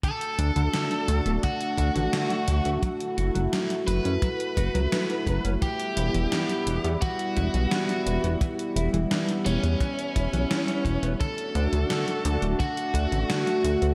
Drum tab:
HH |xxxxxxxxxxxxxxxx|xxxxxxxxxxxxxxxx|xxxxxxxxxxxxxxxx|xxxxxxxxxxxxxxxx|
SD |----o-------o---|----o-------o---|----o-------o---|----o-------o---|
BD |o-------o-o-----|o-------o-o---o-|o-------o-o-----|o-------o-o---o-|

HH |xxxxxxxxxxxxxxxx|
SD |----o-------o---|
BD |o-------o-o-----|